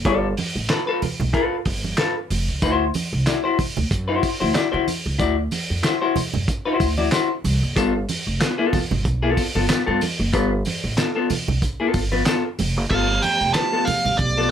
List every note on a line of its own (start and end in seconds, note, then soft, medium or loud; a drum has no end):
0.05 0.32 G1 loud
0.05 0.27 F4 medium
0.05 0.27 A4 medium
0.05 0.27 D5 medium
0.05 kick loud
0.05 closed hi-hat medium
0.05 muted conga soft
0.37 open hi-hat medium
0.37 muted conga soft
0.37 high conga medium
0.55 0.67 A1 medium
0.69 0.82 F4 medium
0.69 0.82 A4 medium
0.69 0.82 B4 medium
0.69 snare loud
0.69 clap medium
0.69 closed hi-hat medium
0.69 muted conga soft
0.87 1.01 F4 medium
0.87 1.00 A4 medium
0.87 1.00 B4 medium
1.02 muted upright bass stroke soft
1.02 open hi-hat medium
1.02 muted conga soft
1.02 high conga medium
1.02 low conga medium
1.20 1.31 B1 loud
1.20 low conga medium
1.33 1.55 F4 medium
1.33 1.55 A4 medium
1.33 1.55 B4 medium
1.33 kick medium
1.33 closed hi-hat medium
1.65 1.93 G1 medium
1.65 kick medium
1.65 open hi-hat medium
1.84 high conga medium
1.97 2.14 F4 medium
1.97 2.14 A4 medium
1.97 2.14 B4 medium
1.97 snare loud
1.97 clap medium
1.97 closed hi-hat loud
1.97 muted conga soft
2.30 2.45 F1 medium
2.30 open hi-hat medium
2.30 high conga medium
2.48 2.60 C#2 medium
2.62 2.89 D2 loud
2.62 2.84 E4 medium
2.62 2.84 F#4 medium
2.62 2.84 C5 loud
2.62 kick loud
2.62 closed hi-hat medium
2.62 tambourine medium
2.94 open hi-hat medium
2.94 tambourine soft
2.94 muted conga soft
2.94 high conga medium
3.13 3.24 C2 medium
3.26 3.39 E4 medium
3.26 3.39 F#4 medium
3.26 3.39 D5 medium
3.26 snare loud
3.26 clap medium
3.26 closed hi-hat medium
3.26 tambourine medium
3.44 3.57 E4 medium
3.44 3.57 F#4 medium
3.44 3.57 C5 medium
3.59 muted upright bass stroke soft
3.59 kick medium
3.59 open hi-hat medium
3.59 high conga medium
3.59 low conga medium
3.77 3.89 D2 medium
3.77 low conga medium
3.91 4.18 F#2 loud
3.91 kick medium
3.91 closed hi-hat medium
3.91 tambourine soft
4.08 4.28 E4 medium
4.08 4.28 F#4 medium
4.08 4.27 C5 medium
4.23 kick medium
4.23 open hi-hat medium
4.23 tambourine medium
4.23 muted conga soft
4.40 4.53 D2 loud
4.40 4.51 E4 medium
4.40 4.51 F#4 medium
4.40 4.51 C5 medium
4.40 high conga medium
4.54 4.67 E4 medium
4.54 4.67 F#4 medium
4.54 4.68 D5 medium
4.54 snare loud
4.54 clap medium
4.54 closed hi-hat loud
4.54 tambourine medium
4.72 4.85 D3 medium
4.72 4.86 E4 medium
4.72 4.85 F#4 medium
4.72 4.85 C5 medium
4.88 open hi-hat medium
4.88 tambourine medium
4.88 high conga medium
5.06 5.17 C#2 medium
5.18 5.46 D2 loud
5.18 5.35 E4 medium
5.18 5.35 F#4 medium
5.18 5.36 D5 loud
5.18 kick loud
5.18 closed hi-hat medium
5.18 tambourine medium
5.51 open hi-hat medium
5.51 tambourine medium
5.51 muted conga soft
5.51 high conga medium
5.70 5.82 F2 medium
5.83 5.96 E4 medium
5.83 5.96 F#4 medium
5.83 5.97 C5 medium
5.83 snare loud
5.83 clap medium
5.83 closed hi-hat medium
5.83 tambourine medium
6.02 6.15 E4 medium
6.02 6.14 F#4 medium
6.02 6.14 C5 medium
6.16 muted upright bass stroke soft
6.16 open hi-hat medium
6.16 tambourine soft
6.16 muted conga soft
6.16 high conga medium
6.16 low conga medium
6.34 6.46 F#2 medium
6.34 low conga medium
6.48 kick loud
6.48 closed hi-hat medium
6.48 tambourine soft
6.65 6.85 E4 medium
6.65 6.85 F#4 medium
6.65 6.84 C5 medium
6.80 7.07 D2 medium
6.80 kick medium
6.80 open hi-hat medium
6.80 tambourine medium
6.98 7.08 E4 medium
6.98 7.08 F#4 medium
6.98 7.08 D5 medium
6.98 high conga medium
7.12 7.28 E4 medium
7.12 7.28 F#4 medium
7.12 7.29 C5 medium
7.12 snare loud
7.12 clap medium
7.12 closed hi-hat loud
7.12 tambourine medium
7.12 muted conga soft
7.44 7.59 C2 medium
7.44 open hi-hat medium
7.44 tambourine medium
7.44 muted conga soft
7.44 high conga medium
7.63 7.77 F#1 medium
7.76 8.03 G1 medium
7.76 7.92 B3 medium
7.76 7.93 F4 loud
7.76 7.93 A4 loud
7.76 kick loud
7.76 closed hi-hat loud
7.76 tambourine medium
8.09 open hi-hat medium
8.09 tambourine medium
8.09 muted conga soft
8.09 high conga medium
8.27 8.38 F1 medium
8.40 8.53 B3 medium
8.40 8.53 F4 medium
8.40 8.54 B4 medium
8.40 snare loud
8.40 clap medium
8.40 closed hi-hat loud
8.40 tambourine medium
8.58 8.78 B3 medium
8.58 8.77 F4 medium
8.58 8.77 A4 medium
8.73 muted upright bass stroke soft
8.73 kick medium
8.73 open hi-hat medium
8.73 tambourine soft
8.73 muted conga soft
8.73 high conga medium
8.73 low conga medium
8.91 9.03 G1 medium
8.91 low conga medium
9.05 9.32 B1 loud
9.05 kick medium
9.05 closed hi-hat medium
9.05 tambourine soft
9.05 muted conga soft
9.23 9.42 B3 medium
9.23 9.42 F4 medium
9.23 9.41 A4 medium
9.37 kick medium
9.37 open hi-hat medium
9.37 tambourine medium
9.37 muted conga soft
9.55 9.67 G1 loud
9.55 9.65 B3 medium
9.55 9.65 F4 medium
9.55 9.65 A4 medium
9.55 high conga medium
9.69 9.81 B3 medium
9.69 9.82 F4 medium
9.69 9.82 B4 medium
9.69 snare loud
9.69 clap loud
9.69 closed hi-hat loud
9.69 tambourine medium
9.69 muted conga soft
9.86 9.99 G2 loud
9.86 10.00 B3 medium
9.86 10.00 F4 medium
9.86 9.99 A4 medium
10.01 open hi-hat medium
10.01 tambourine medium
10.01 muted conga soft
10.01 high conga medium
10.19 10.34 F#1 loud
10.33 10.60 G1 loud
10.33 10.49 B3 medium
10.33 10.49 F4 medium
10.33 10.49 B4 loud
10.33 kick loud
10.33 closed hi-hat medium
10.33 tambourine medium
10.65 open hi-hat medium
10.65 tambourine medium
10.65 high conga medium
10.84 10.95 A1 medium
10.97 11.10 B3 medium
10.97 11.10 F4 medium
10.97 11.10 A4 medium
10.97 snare loud
10.97 clap medium
10.97 closed hi-hat loud
10.97 tambourine medium
10.97 muted conga soft
11.15 11.29 B3 medium
11.15 11.29 F4 medium
11.15 11.28 A4 medium
11.30 muted upright bass stroke soft
11.30 open hi-hat medium
11.30 tambourine soft
11.30 muted conga soft
11.30 high conga medium
11.30 low conga medium
11.48 11.60 B1 medium
11.48 low conga medium
11.62 kick medium
11.62 closed hi-hat medium
11.62 tambourine soft
11.62 muted conga soft
11.80 11.99 B3 medium
11.80 11.99 F4 medium
11.80 11.99 A4 medium
11.94 12.21 G1 medium
11.94 kick medium
11.94 open hi-hat medium
11.94 tambourine medium
12.12 12.22 B3 medium
12.12 12.22 F4 medium
12.12 12.22 B4 medium
12.12 high conga medium
12.26 12.42 B3 medium
12.26 12.42 F4 medium
12.26 12.43 A4 medium
12.26 snare loud
12.26 clap loud
12.26 closed hi-hat loud
12.26 tambourine medium
12.26 muted conga soft
12.59 12.77 F1 medium
12.59 open hi-hat medium
12.59 tambourine medium
12.59 muted conga soft
12.59 high conga medium
12.59 low conga medium
12.77 12.88 F#1 medium
12.90 13.17 G1 loud
12.90 14.51 F3 medium
12.90 14.51 A3 medium
12.90 13.06 B3 medium
12.90 14.51 B3 medium
12.90 13.07 F4 medium
12.90 14.51 G4 medium
12.90 13.07 A4 medium
12.90 13.24 F5 loud
12.90 kick loud
12.90 crash loud
13.22 13.52 G5 medium
13.22 open hi-hat medium
13.22 muted conga soft
13.22 high conga medium
13.41 13.53 F1 medium
13.54 13.67 B3 soft
13.54 13.68 F4 medium
13.54 13.68 B4 medium
13.54 13.87 A5 loud
13.54 snare loud
13.54 clap medium
13.54 closed hi-hat medium
13.54 muted conga soft
13.72 13.86 B3 medium
13.72 13.85 F4 medium
13.72 13.85 A4 medium
13.85 14.19 F5 medium
13.85 muted upright bass stroke soft
13.85 open hi-hat medium
13.85 high conga medium
13.85 low conga medium
14.05 14.17 G1 medium
14.05 low conga medium
14.18 14.46 B1 loud
14.18 14.50 D5 medium
14.18 kick medium
14.18 closed hi-hat medium
14.18 muted conga soft
14.38 14.50 B3 medium
14.38 14.50 F4 medium
14.38 14.50 A4 medium